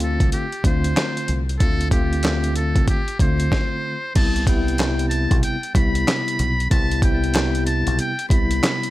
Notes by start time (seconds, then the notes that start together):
Already playing: D2 D3 A3 C4 F4
0.00 A4, closed hi-hat
0.20 C2, kick, closed hi-hat
0.32 G4, closed hi-hat
0.52 closed hi-hat
0.64 D2 D3 A3 C4 F4 C5, kick, closed hi-hat
0.84 closed hi-hat
0.97 snare, clap, closed hi-hat
1.17 closed hi-hat
1.28 C2, closed hi-hat
1.49 closed hi-hat
1.59 D2 D3 A3 C4 F4 A4, kick, closed hi-hat
1.81 closed hi-hat
1.91 D3 A3 C4 F4 G4, kick, closed hi-hat
2.13 closed hi-hat
2.23 D3 A3 C4 F4, snare, clap, closed hi-hat
2.44 closed hi-hat
2.56 A4, closed hi-hat
2.76 C2, kick, closed hi-hat
2.88 G4, kick, closed hi-hat
3.08 closed hi-hat
3.19 D2 D3 A3 C4 F4 C5, kick, closed hi-hat
3.40 closed hi-hat
3.52 kick, snare
4.15 C2 C3 G3 B3 E4 A5, kick, closed hi-hat, crash
4.36 closed hi-hat
4.47 C3 G3 B3 E4 G5, kick, closed hi-hat
4.68 closed hi-hat
4.78 C3 G3 B3 E4, snare, clap, closed hi-hat
4.99 closed hi-hat
5.09 A5, closed hi-hat
5.31 B1, kick, closed hi-hat
5.43 G5, closed hi-hat
5.63 closed hi-hat
5.74 C2 C3 G3 B3 E4 B5, kick, closed hi-hat
5.95 closed hi-hat
6.08 snare, clap, closed hi-hat
6.28 closed hi-hat
6.39 B1, closed hi-hat
6.60 closed hi-hat
6.70 C2 C3 G3 B3 E4 A5, kick, closed hi-hat
6.91 closed hi-hat
7.02 C3 G3 B3 E4 G5, kick, closed hi-hat
7.24 closed hi-hat
7.34 C3 G3 B3 E4, snare, clap, closed hi-hat
7.55 closed hi-hat
7.66 A5, closed hi-hat
7.87 B1, closed hi-hat
7.99 G5, closed hi-hat
8.19 closed hi-hat
8.29 C2 C3 G3 B3 E4 B5, kick, closed hi-hat
8.51 closed hi-hat
8.63 snare, clap, closed hi-hat
8.83 closed hi-hat